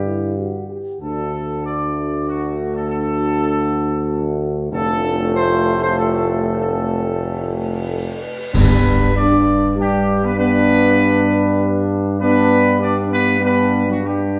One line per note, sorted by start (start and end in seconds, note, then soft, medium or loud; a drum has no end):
0.00 0.65 G2 medium
0.00 0.65 D3 medium
0.00 0.65 G3 medium
0.00 0.36 G4 medium
0.06 0.35 E4 medium
0.38 0.67 F#4 medium
0.69 0.98 G4 medium
1.01 4.68 D2 medium
1.01 4.68 D3 medium
1.01 4.68 A3 medium
1.01 5.29 D4 medium
1.01 4.68 F#4 medium
1.01 1.62 A4 medium
1.65 2.24 D5 medium
2.28 2.71 F#4 medium
2.74 2.87 A4 medium
2.88 4.37 A4 loud
4.71 8.18 F1 medium
4.71 8.19 A2 medium
4.71 8.19 A3 loud
4.71 7.13 F4 medium
4.71 5.29 A4 loud
5.32 7.17 C4 medium
5.32 5.76 C5 loud
5.80 5.95 C5 loud
5.97 6.56 A4 medium
6.59 7.85 A4 medium
7.24 7.39 F4 medium
7.55 7.70 G4 medium
7.89 8.20 A4 medium
8.21 8.54 B4 medium
8.53 9.43 G2 loud
8.53 14.39 G2 medium
8.53 9.11 G3 medium
8.53 9.12 B3 medium
8.53 9.12 D4 medium
8.53 9.11 B4 loud
8.53 concert bass drum medium
8.53 crash medium
9.13 9.72 G3 medium
9.13 9.72 D4 medium
9.13 9.74 D4 medium
9.13 9.73 D5 loud
9.75 10.33 G3 medium
9.75 10.20 G3 medium
9.75 10.34 D4 medium
9.75 10.20 G4 loud
10.23 10.30 B3 medium
10.23 10.37 B4 loud
10.38 12.17 G3 medium
10.38 11.87 B3 loud
10.38 12.17 D4 loud
10.38 11.87 B4 loud
12.20 12.77 G3 medium
12.20 12.78 B3 loud
12.20 12.77 D4 medium
12.20 12.77 B4 loud
12.79 13.37 G3 medium
12.79 13.37 D4 medium
12.79 13.12 D4 loud
12.79 12.94 D5 loud
13.11 13.39 B3 medium
13.11 13.40 B4 loud
13.40 14.00 G3 medium
13.40 13.84 B3 loud
13.40 13.99 D4 medium
13.40 13.86 B4 loud
13.87 13.94 F#3 medium
13.87 14.04 F#4 medium
14.02 14.39 G3 medium
14.02 14.39 D4 medium
14.02 14.39 G4 medium